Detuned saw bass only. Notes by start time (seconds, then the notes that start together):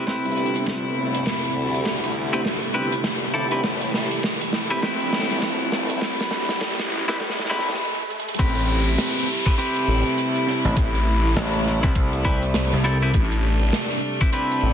0.25 G1
0.37 G1
1.56 D2
2.03 D2
2.63 G1
2.74 G1
3.64 A1
5.00 G1
5.12 G1
6.31 D2
6.78 A1
7.08 C2
7.50 C2
8.39 A1
9.88 A1
10.77 A1
13.14 A1
14.63 A1